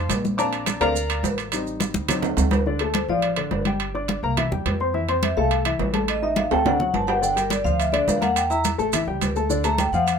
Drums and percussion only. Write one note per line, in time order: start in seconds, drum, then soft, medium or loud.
0.10 high conga medium
0.10 high timbale medium
0.10 low timbale medium
0.10 maracas medium
0.25 high conga medium
0.25 maracas soft
0.39 high conga soft
0.39 high timbale medium
0.39 maracas medium
0.53 high conga soft
0.53 high timbale medium
0.53 maracas soft
0.66 high conga loud
0.66 high timbale medium
0.66 low timbale medium
0.66 maracas medium
0.81 high conga soft
0.81 high timbale medium
0.81 maracas soft
0.95 high conga soft
0.95 maracas medium
1.10 high conga soft
1.10 high timbale medium
1.10 maracas soft
1.24 high conga medium
1.24 low timbale medium
1.24 maracas medium
1.38 high timbale medium
1.38 maracas soft
1.52 high conga soft
1.52 high timbale medium
1.52 maracas medium
1.66 high conga soft
1.66 maracas soft
1.80 high conga loud
1.80 high timbale medium
1.80 low timbale medium
1.80 maracas medium
1.94 high conga loud
1.94 maracas soft
2.08 high conga soft
2.08 low conga medium
2.08 high timbale loud
2.08 maracas medium
2.22 high conga soft
2.22 low conga medium
2.22 high timbale medium
2.22 maracas soft
2.37 high conga medium
2.37 high timbale loud
2.37 maracas medium
2.51 high conga loud
2.51 low timbale loud
2.51 maracas soft
2.66 high conga soft
2.79 high conga soft
2.79 high timbale medium
2.94 high conga loud
2.94 high timbale medium
2.94 low timbale medium
3.09 high conga soft
3.22 high conga soft
3.22 high timbale medium
3.36 high conga soft
3.36 high timbale medium
3.51 high conga medium
3.51 low timbale medium
3.65 high conga medium
3.65 high timbale medium
3.80 high timbale medium
3.95 high conga soft
4.08 high conga loud
4.08 high timbale medium
4.08 low timbale medium
4.24 high conga soft
4.37 high conga soft
4.37 low conga medium
4.37 high timbale loud
4.52 high conga soft
4.52 low conga medium
4.66 high conga medium
4.66 high timbale medium
4.66 low timbale medium
4.80 high conga soft
4.94 high conga soft
5.09 high conga soft
5.09 high timbale medium
5.23 high conga medium
5.23 high timbale medium
5.23 low timbale medium
5.37 high conga soft
5.51 high conga soft
5.51 high timbale medium
5.65 high conga soft
5.65 high timbale loud
5.79 high conga medium
5.79 low timbale medium
5.94 high conga loud
5.94 high timbale medium
6.08 high conga soft
6.08 high timbale loud
6.23 high conga soft
6.36 high conga loud
6.36 high timbale medium
6.36 low timbale medium
6.51 high conga soft
6.51 high timbale loud
6.66 high conga soft
6.66 low conga medium
6.66 high timbale loud
6.80 high conga soft
6.80 low conga medium
6.94 high conga medium
6.94 low timbale medium
7.08 high conga soft
7.08 low timbale medium
7.23 high conga soft
7.23 maracas medium
7.37 high conga soft
7.37 high timbale medium
7.37 maracas medium
7.50 high conga medium
7.50 high timbale medium
7.50 low timbale medium
7.50 maracas medium
7.65 high conga soft
7.65 maracas soft
7.79 high conga soft
7.79 high timbale medium
7.79 maracas medium
7.94 high conga soft
7.94 high timbale medium
8.08 high conga medium
8.08 low timbale medium
8.08 maracas medium
8.22 high conga medium
8.22 high timbale medium
8.22 maracas soft
8.36 high conga soft
8.36 high timbale medium
8.36 maracas medium
8.51 high conga soft
8.51 maracas medium
8.64 high conga loud
8.64 high timbale medium
8.64 low timbale medium
8.64 maracas medium
8.79 high conga soft
8.79 maracas soft
8.93 high conga soft
8.93 low conga medium
8.93 high timbale medium
8.93 maracas medium
9.08 high conga soft
9.21 high conga medium
9.21 high timbale medium
9.21 low timbale medium
9.21 maracas medium
9.36 high conga soft
9.36 maracas soft
9.50 high conga soft
9.50 maracas medium
9.64 high conga soft
9.64 high timbale medium
9.64 maracas medium
9.78 high conga loud
9.78 high timbale medium
9.78 low timbale medium
9.78 maracas medium
9.93 high conga soft
9.93 maracas soft
10.07 high conga soft
10.07 high timbale medium
10.07 maracas medium